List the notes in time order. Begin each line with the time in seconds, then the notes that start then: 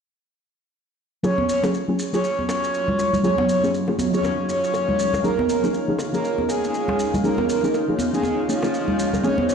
1.23 F#3 A#3 C#4 F4 G#4 C#5, high bongo, shaker
1.38 high conga
1.48 C#5, shaker
1.63 F#3 A#3 C#4 F4 G#4, high bongo, shaker
1.71 D#4, shaker
1.88 F#3 A#3 C#4 F4 G#4
1.95 F5
1.99 shaker
2.13 F#3 A#3 C#4 F4 G#4 C#5, high bongo, shaker
2.23 G#4, shaker
2.32 C#4
2.39 high conga
2.48 C#5, high bongo, shaker
2.64 shaker
2.74 shaker
2.88 low conga
2.99 high bongo, shaker
3.13 low conga, shaker
3.23 F#3 A#3 C#4 F4 G#4 C#5, shaker
3.38 high bongo, high conga
3.49 C#5, shaker
3.63 F#3 A#3 C#4 F4 G#4, shaker
3.74 shaker
3.88 F#3 A#3 C#4 F4 G#4, high bongo
3.99 high conga, shaker
4.12 F#3 A#3 C#4 F4 G#4 C#5, shaker
4.23 high bongo, high conga, shaker
4.48 C#5, shaker
4.64 shaker
4.74 high bongo, shaker
4.89 low conga
4.99 shaker
5.14 high bongo, low conga, shaker
5.23 F3 A#3 C#4 D#4 F4 G#4 A#4, shaker
5.39 high conga
5.48 A#4, shaker
5.63 F3 A#3 C#4 D#4 G#4, high bongo, shaker
5.74 shaker
5.88 F3 A#3 C#4 D#4 G#4
5.99 high bongo, shaker
6.12 F3 A#3 C#4 D#4 G#4 A#4, shaker
6.24 shaker
6.38 high conga
6.49 G#4, high bongo, shaker
6.64 shaker
6.74 shaker
6.88 high bongo, low conga
6.99 shaker
7.14 low conga, shaker
7.23 F3 A#3 C#4 D#4 G#4 A#4, shaker
7.38 high bongo, high conga
7.49 A#4, shaker
7.63 F3 A#3 C#4 D#4 G#4, shaker
7.74 high bongo, shaker
7.88 F3 A#3 C#4 D#4 G#4
7.99 high conga, shaker
8.13 F3 A#3 C#4 D#4 G#4, shaker
8.23 high bongo, high conga, shaker
8.48 F3 A#3 C#4 D#4 F4 G#4, shaker
8.63 F3 A#3 C#4 D#4 F4, high bongo, shaker
8.74 shaker
8.88 low conga
8.99 shaker
9.13 high bongo, low conga, shaker
9.23 F3 A#3 C4 C#4 F4 G#4 C5 C#5, high bongo, shaker
9.38 high conga
9.48 C#5, shaker